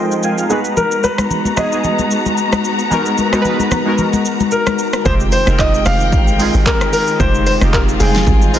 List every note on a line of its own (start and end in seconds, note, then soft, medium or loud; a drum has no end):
0.00 0.46 F3 medium
0.00 0.49 G#3 medium
0.00 5.02 G#3 medium
0.00 0.52 C4 medium
0.00 0.51 D#4 medium
0.00 0.48 F4 medium
0.00 0.52 F4 medium
0.00 0.52 G#4 loud
0.00 0.52 A4 medium
0.00 0.52 A#4 loud
0.00 0.23 C5 medium
0.00 0.23 D#5 medium
0.00 0.46 G5 medium
0.12 shaker soft
0.23 0.38 F5 medium
0.23 0.38 G#5 medium
0.23 shaker medium
0.38 0.64 F5 medium
0.38 shaker medium
0.49 1.36 G#3 medium
0.49 1.36 B3 medium
0.49 5.02 B3 medium
0.49 1.37 D#4 medium
0.49 5.02 F#4 medium
0.49 1.37 F#4 medium
0.49 0.56 G#4 medium
0.49 1.38 B4 medium
0.49 5.02 A#5 medium
0.49 shaker medium
0.65 shaker soft
0.77 1.05 A#4 medium
0.77 low conga medium
0.77 shaker medium
0.91 shaker medium
1.04 1.59 B4 medium
1.04 high conga medium
1.04 shaker medium
1.18 cross-stick medium
1.18 high conga medium
1.18 shaker medium
1.31 low conga medium
1.31 shaker medium
1.45 high conga medium
1.45 shaker medium
1.56 1.69 G#3 medium
1.56 1.69 B3 medium
1.56 1.70 D#4 medium
1.56 1.70 F#4 medium
1.56 1.70 G#4 medium
1.56 2.60 D#5 loud
1.56 cross-stick medium
1.56 high conga medium
1.56 low conga medium
1.56 shaker medium
1.71 2.57 G#3 medium
1.71 2.57 B3 medium
1.71 2.58 D#4 medium
1.71 2.58 F#4 medium
1.71 2.58 G#4 medium
1.71 shaker medium
1.84 low conga medium
1.84 shaker medium
1.99 high conga medium
1.99 shaker medium
2.11 shaker loud
2.26 high conga medium
2.26 shaker soft
2.37 shaker medium
2.52 cross-stick medium
2.52 high conga medium
2.52 shaker medium
2.65 shaker medium
2.79 shaker medium
2.90 3.24 G#3 medium
2.90 3.24 B3 medium
2.90 3.24 D#4 medium
2.90 3.25 F#4 medium
2.90 3.25 A#4 loud
2.90 low conga medium
2.90 shaker medium
3.06 shaker medium
3.18 high conga medium
3.18 shaker medium
3.32 3.74 G#3 medium
3.32 3.75 B3 medium
3.32 3.75 D#4 medium
3.32 3.75 F#4 medium
3.32 3.40 A#4 medium
3.32 cross-stick loud
3.32 high conga medium
3.32 shaker medium
3.42 3.79 B4 loud
3.42 low conga medium
3.42 shaker medium
3.60 high conga medium
3.60 shaker medium
3.71 cross-stick medium
3.71 high conga medium
3.71 low conga medium
3.71 shaker medium
3.86 4.71 G#3 medium
3.86 4.72 B3 medium
3.86 4.72 D#4 medium
3.86 4.72 F#4 medium
3.86 4.73 A#4 medium
3.98 low conga medium
3.98 shaker medium
4.13 high conga medium
4.13 shaker medium
4.25 shaker loud
4.40 high conga medium
4.40 shaker medium
4.51 5.07 A#4 medium
4.51 shaker medium
4.67 cross-stick medium
4.67 high conga medium
4.67 shaker medium
4.79 shaker medium
4.93 cross-stick medium
4.93 shaker medium
5.05 5.45 F1 loud
5.05 8.59 D#3 medium
5.05 5.38 G#3 medium
5.05 8.59 G#3 medium
5.05 5.38 C4 medium
5.05 5.39 D#4 medium
5.05 5.39 F4 medium
5.05 5.40 G4 medium
5.05 5.12 C5 loud
5.05 7.18 G5 medium
5.05 kick loud
5.05 shaker medium
5.20 shaker medium
5.32 5.60 C5 medium
5.32 open hi-hat medium
5.32 shaker medium
5.46 5.84 F1 loud
5.46 5.78 G#3 medium
5.46 5.79 C4 medium
5.46 5.79 D#4 medium
5.46 5.80 F4 medium
5.46 5.80 A#4 medium
5.46 cross-stick loud
5.46 shaker medium
5.59 5.87 D#5 loud
5.59 kick loud
5.59 clap loud
5.59 shaker medium
5.74 shaker medium
5.85 6.14 F1 loud
5.85 6.29 G#3 medium
5.85 6.30 C4 medium
5.85 6.30 D#4 medium
5.85 6.31 F4 medium
5.85 6.31 G4 medium
5.85 6.69 F5 loud
5.85 cross-stick loud
5.85 open hi-hat medium
5.85 shaker loud
6.01 shaker medium
6.12 6.52 A#1 loud
6.12 kick loud
6.12 shaker medium
6.27 shaker medium
6.39 7.04 G#3 medium
6.39 7.05 C4 medium
6.39 7.05 D#4 medium
6.39 7.06 F4 medium
6.39 7.06 G#4 medium
6.39 open hi-hat medium
6.39 shaker loud
6.54 6.66 G#1 medium
6.54 shaker medium
6.66 6.91 A#4 medium
6.66 kick loud
6.66 clap loud
6.66 shaker medium
6.81 cross-stick loud
6.81 shaker medium
6.93 7.18 A#4 medium
6.93 open hi-hat medium
6.93 shaker medium
7.08 shaker medium
7.19 7.59 F1 loud
7.19 7.52 G#3 medium
7.19 7.53 C4 medium
7.19 7.53 D#4 medium
7.19 8.59 F4 medium
7.19 7.53 F4 medium
7.19 7.54 G4 medium
7.19 7.45 C5 loud
7.19 kick loud
7.19 shaker medium
7.34 shaker medium
7.47 7.53 C5 medium
7.47 open hi-hat medium
7.47 shaker loud
7.61 7.98 F1 medium
7.61 7.93 G#3 medium
7.61 7.93 C4 medium
7.61 7.93 D#4 medium
7.61 7.94 F4 medium
7.61 7.94 G4 medium
7.61 cross-stick loud
7.61 shaker medium
7.73 7.79 A#4 medium
7.73 kick loud
7.73 clap loud
7.73 shaker medium
7.89 shaker medium
8.00 8.26 F1 loud
8.00 8.07 G3 medium
8.00 8.44 C4 medium
8.00 8.45 D#4 medium
8.00 8.45 F4 medium
8.00 8.59 G#4 loud
8.00 8.45 G5 medium
8.00 open hi-hat medium
8.00 shaker medium
8.06 8.47 G#3 medium
8.15 snare medium
8.15 shaker medium
8.27 8.59 G#1 loud
8.27 kick loud
8.27 shaker medium
8.42 shaker medium
8.53 8.59 G#3 medium
8.53 8.59 C4 medium
8.53 8.59 D#4 medium
8.53 8.59 F4 medium
8.53 open hi-hat medium
8.53 shaker loud